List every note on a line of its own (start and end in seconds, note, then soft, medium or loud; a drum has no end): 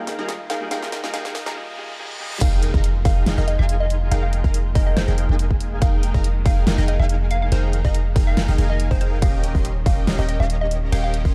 0.00 1.52 D#3 medium
0.00 1.52 G#3 medium
0.00 1.52 A#3 medium
0.00 0.16 D#4 medium
0.00 1.52 F4 medium
0.00 0.16 G#4 medium
0.00 0.16 A#4 medium
0.00 0.16 F5 medium
0.00 0.16 G5 loud
0.00 riser medium
0.07 snare medium
0.07 closed hi-hat medium
0.18 0.33 G3 medium
0.18 0.33 A#3 medium
0.18 0.31 D#4 medium
0.18 0.34 D#4 medium
0.18 0.34 F4 medium
0.18 0.31 G#4 medium
0.18 0.34 G#4 medium
0.18 0.31 A#4 medium
0.18 0.31 F5 medium
0.18 0.31 A#5 medium
0.29 snare medium
0.29 closed hi-hat medium
0.50 0.69 D#4 medium
0.50 0.69 G#4 medium
0.50 0.69 A#4 medium
0.50 0.64 F5 medium
0.50 0.69 F5 medium
0.50 0.69 G5 medium
0.50 snare medium
0.50 closed hi-hat medium
0.60 0.69 G3 medium
0.60 0.69 A#3 medium
0.60 0.70 D#4 medium
0.60 0.70 F4 medium
0.60 0.70 G#4 loud
0.70 0.86 G3 medium
0.70 0.87 A#3 medium
0.70 1.01 D#4 medium
0.70 0.87 D#4 medium
0.70 0.87 F4 medium
0.70 1.01 G#4 medium
0.70 0.87 G#4 medium
0.70 1.01 A#4 medium
0.70 1.01 F5 medium
0.70 0.86 F5 medium
0.70 1.01 G5 loud
0.70 snare medium
0.70 closed hi-hat medium
0.83 snare medium
0.92 snare medium
0.92 closed hi-hat medium
1.03 1.11 G3 medium
1.03 1.12 A#3 medium
1.03 1.12 D#4 medium
1.03 1.12 F4 medium
1.03 1.12 G#4 medium
1.03 1.13 G#4 loud
1.03 1.12 A#4 medium
1.03 1.12 F5 medium
1.03 1.12 A#5 medium
1.03 snare medium
1.13 1.29 G3 medium
1.13 1.29 A#3 medium
1.13 1.44 D#4 medium
1.13 1.29 D#4 medium
1.13 1.30 F4 medium
1.13 1.44 G#4 medium
1.13 1.30 G#4 medium
1.13 1.44 A#4 medium
1.13 1.28 F5 medium
1.13 1.44 F5 medium
1.13 1.44 G5 loud
1.13 snare medium
1.13 closed hi-hat medium
1.25 snare medium
1.35 snare loud
1.35 open hi-hat medium
1.45 1.54 G3 medium
1.45 1.54 A#3 medium
1.45 1.55 D#4 medium
1.45 1.55 F4 medium
1.45 1.55 G#4 medium
1.45 1.55 G#4 loud
1.45 1.55 A#4 medium
1.45 1.55 F5 medium
1.45 1.55 A#5 medium
1.45 snare medium
1.55 1.71 G3 medium
1.55 1.72 A#3 medium
1.55 1.72 D#4 medium
1.55 1.72 F4 medium
1.55 1.73 G#4 medium
1.55 reverse cymbal medium
1.77 1.93 G3 medium
1.77 1.93 A#3 medium
1.77 1.93 D#4 medium
1.77 1.94 F4 medium
1.77 1.94 G#4 medium
1.98 2.14 G3 medium
1.98 2.14 A#3 medium
1.98 2.15 D#4 medium
1.98 2.15 F4 medium
1.98 2.15 G#4 medium
2.19 2.35 G3 medium
2.19 2.36 A#3 medium
2.19 2.36 D#4 medium
2.19 2.36 F4 medium
2.19 2.36 G#4 medium
2.41 2.72 F1 loud
2.41 11.35 D#3 medium
2.41 9.18 G#3 medium
2.41 11.35 A#3 medium
2.41 2.71 D#4 medium
2.41 5.78 F4 medium
2.41 2.71 G#4 medium
2.41 2.71 A#4 medium
2.41 2.56 F5 medium
2.41 2.71 F5 medium
2.41 2.71 G5 loud
2.41 kick loud
2.41 closed hi-hat medium
2.41 crash loud
2.41 impact medium
2.63 closed hi-hat medium
2.74 3.03 F1 loud
2.74 2.86 D#4 medium
2.74 2.86 G#4 medium
2.74 2.86 A#4 medium
2.74 2.86 F5 medium
2.74 2.86 A#5 loud
2.74 kick medium
2.84 closed hi-hat medium
3.05 3.24 F1 loud
3.05 3.24 D#4 medium
3.05 3.24 G#4 medium
3.05 3.24 A#4 medium
3.05 3.24 F5 medium
3.05 3.20 F5 medium
3.05 3.24 G5 loud
3.05 kick loud
3.05 open hi-hat medium
3.26 3.36 F1 loud
3.26 3.36 D#4 medium
3.26 3.36 G#4 medium
3.26 3.36 A#4 medium
3.26 3.36 F5 medium
3.26 3.36 G5 medium
3.26 snare loud
3.26 closed hi-hat medium
3.38 3.57 F1 medium
3.38 3.56 D#4 medium
3.38 3.56 G#4 medium
3.38 3.56 A#4 medium
3.38 3.44 D#5 medium
3.38 3.56 F5 medium
3.38 3.56 G5 loud
3.48 3.55 D#5 medium
3.48 closed hi-hat medium
3.59 4.10 F1 loud
3.59 4.09 D#4 medium
3.59 4.09 G#4 medium
3.59 4.09 A#4 medium
3.59 3.78 F5 medium
3.59 4.09 F5 medium
3.59 4.09 G#5 medium
3.69 closed hi-hat medium
3.80 3.94 D#5 medium
3.90 closed hi-hat medium
4.11 4.42 F1 loud
4.11 4.41 D#4 loud
4.11 4.41 G#4 medium
4.11 4.41 A#4 medium
4.11 4.19 F5 medium
4.11 4.41 F5 medium
4.11 4.41 G5 loud
4.11 closed hi-hat medium
4.23 4.29 F5 medium
4.33 closed hi-hat medium
4.44 4.73 F1 loud
4.44 4.57 D#4 medium
4.44 4.57 G#4 medium
4.44 4.57 A#4 medium
4.44 4.57 F5 medium
4.44 4.57 A#5 loud
4.44 kick medium
4.54 closed hi-hat medium
4.75 4.95 F1 loud
4.75 4.94 D#4 medium
4.75 4.94 G#4 medium
4.75 4.94 A#4 medium
4.75 4.83 D#5 medium
4.75 4.94 F5 medium
4.75 4.94 G5 loud
4.75 kick loud
4.75 open hi-hat medium
4.87 4.93 D#5 medium
4.97 5.06 F1 loud
4.97 5.06 D#4 medium
4.97 5.06 G#4 medium
4.97 5.06 A#4 medium
4.97 5.29 C5 medium
4.97 5.06 F5 medium
4.97 5.06 G5 medium
4.97 snare loud
4.97 closed hi-hat medium
5.08 5.27 F1 loud
5.08 5.27 D#4 medium
5.08 5.27 G#4 medium
5.08 5.27 A#4 medium
5.08 5.27 F5 medium
5.08 5.27 G5 loud
5.18 closed hi-hat medium
5.29 5.80 F1 loud
5.29 5.79 D#4 medium
5.29 5.79 G#4 medium
5.29 5.79 A#4 medium
5.29 5.79 F5 medium
5.29 5.79 G#5 medium
5.39 closed hi-hat medium
5.51 kick medium
5.61 closed hi-hat medium
5.82 6.12 F1 loud
5.82 6.12 D#4 loud
5.82 9.19 D#4 medium
5.82 6.12 G#4 medium
5.82 6.12 A#4 medium
5.82 6.12 F5 medium
5.82 5.96 F5 medium
5.82 6.12 G5 loud
5.82 kick loud
5.82 closed hi-hat medium
6.03 closed hi-hat medium
6.14 6.44 F1 loud
6.14 6.27 D#4 medium
6.14 6.27 G#4 medium
6.14 6.27 A#4 medium
6.14 6.27 F5 medium
6.14 6.27 A#5 loud
6.14 kick medium
6.24 closed hi-hat medium
6.46 6.65 F1 loud
6.46 6.64 D#4 medium
6.46 6.64 G#4 medium
6.46 6.64 A#4 medium
6.46 6.65 F5 medium
6.46 6.60 F5 medium
6.46 6.64 G5 loud
6.46 kick loud
6.46 open hi-hat medium
6.67 6.76 F1 loud
6.67 6.77 D#4 medium
6.67 6.77 G#4 medium
6.67 6.77 A#4 medium
6.67 6.77 F5 medium
6.67 6.77 G5 medium
6.67 snare loud
6.67 closed hi-hat medium
6.78 6.97 F1 loud
6.78 6.97 D#4 medium
6.78 6.97 G#4 medium
6.78 6.97 A#4 medium
6.78 6.85 D#5 medium
6.78 6.97 F5 medium
6.78 6.97 G5 loud
6.88 6.96 D#5 medium
6.88 closed hi-hat medium
6.99 7.50 F1 loud
6.99 7.50 D#4 medium
6.99 7.50 G#4 medium
6.99 7.50 A#4 medium
6.99 7.50 F5 medium
6.99 7.19 F5 medium
6.99 7.50 G#5 medium
7.09 closed hi-hat medium
7.31 7.38 F5 medium
7.31 closed hi-hat medium
7.42 7.49 F5 medium
7.52 7.82 F1 medium
7.52 7.82 D#4 medium
7.52 7.82 G#4 medium
7.52 7.82 A#4 medium
7.52 7.82 C5 medium
7.52 7.82 F5 medium
7.52 7.82 G5 loud
7.52 closed hi-hat medium
7.73 closed hi-hat medium
7.85 8.14 F1 loud
7.85 7.97 D#4 medium
7.85 7.97 G#4 medium
7.85 7.97 A#4 medium
7.85 7.98 D#5 medium
7.85 7.97 F5 medium
7.85 7.97 A#5 loud
7.85 kick medium
7.95 closed hi-hat medium
8.16 8.35 F1 loud
8.16 8.35 D#4 medium
8.16 8.35 G#4 medium
8.16 8.35 A#4 medium
8.16 8.35 F5 medium
8.16 8.35 G5 loud
8.16 kick loud
8.16 open hi-hat medium
8.27 8.41 F5 medium
8.37 8.46 F1 loud
8.37 8.47 D#4 medium
8.37 8.47 G#4 medium
8.37 8.47 A#4 medium
8.37 8.47 F5 medium
8.37 8.47 G5 medium
8.37 snare loud
8.37 closed hi-hat medium
8.48 8.56 F1 medium
8.48 8.56 D#4 medium
8.48 8.56 G#4 medium
8.48 8.56 A#4 medium
8.48 8.56 F5 medium
8.48 8.56 G5 loud
8.58 8.89 F1 loud
8.58 8.88 D#4 medium
8.58 8.88 G#4 medium
8.58 8.88 A#4 medium
8.58 8.88 F5 medium
8.58 8.88 G#5 loud
8.58 closed hi-hat medium
8.70 8.83 D#5 medium
8.80 closed hi-hat medium
8.91 9.20 F1 loud
8.91 9.20 D#4 medium
8.91 9.20 G#4 medium
8.91 9.20 A#4 medium
8.91 8.97 C5 medium
8.91 9.20 F5 medium
8.91 9.20 G5 medium
8.91 kick medium
9.01 9.08 C5 medium
9.01 closed hi-hat medium
9.22 9.53 D#1 loud
9.22 11.35 G3 medium
9.22 9.52 C#4 loud
9.22 11.35 C#4 medium
9.22 9.52 G4 medium
9.22 9.52 A#4 medium
9.22 9.52 D#5 medium
9.22 9.37 F5 medium
9.22 9.52 G5 loud
9.22 kick loud
9.22 closed hi-hat medium
9.22 crash medium
9.44 closed hi-hat medium
9.55 9.84 D#1 loud
9.55 9.67 C#4 medium
9.55 9.67 G4 medium
9.55 9.67 A#4 medium
9.55 9.67 D#5 medium
9.55 9.67 C6 loud
9.55 kick medium
9.65 closed hi-hat medium
9.86 10.05 D#1 loud
9.86 10.05 C#4 medium
9.86 10.05 G4 medium
9.86 10.05 A#4 medium
9.86 10.05 D#5 medium
9.86 10.01 F5 medium
9.86 10.05 G5 loud
9.86 kick loud
9.86 open hi-hat medium
10.07 10.16 D#1 loud
10.07 10.17 C#4 medium
10.07 10.17 G4 medium
10.07 10.17 A#4 medium
10.07 10.17 D#5 medium
10.07 10.17 F5 medium
10.07 snare loud
10.07 closed hi-hat medium
10.07 crash soft
10.19 10.38 D#1 loud
10.19 10.37 C#4 medium
10.19 10.37 G4 medium
10.19 10.37 A#4 medium
10.19 10.37 D#5 medium
10.19 10.25 D#5 medium
10.19 10.37 G5 loud
10.29 10.36 D#5 medium
10.29 closed hi-hat medium
10.40 10.90 D#1 medium
10.40 10.90 C#4 medium
10.40 10.90 G4 medium
10.40 10.90 A#4 medium
10.40 10.90 D#5 medium
10.40 10.59 F5 medium
10.40 10.90 A#5 medium
10.50 closed hi-hat medium
10.61 10.75 D#5 medium
10.71 closed hi-hat medium
10.92 11.23 D#1 medium
10.92 11.22 C#4 loud
10.92 11.22 G4 medium
10.92 11.22 A#4 medium
10.92 11.22 D#5 medium
10.92 11.00 F5 medium
10.92 11.22 G5 loud
10.92 closed hi-hat medium
10.92 crash medium
11.04 11.10 F5 medium
11.14 closed hi-hat medium
11.25 11.35 D#1 loud
11.25 11.35 C#4 medium
11.25 11.35 G4 medium
11.25 11.35 A#4 medium
11.25 11.35 D#5 medium
11.25 11.35 C6 loud
11.25 kick medium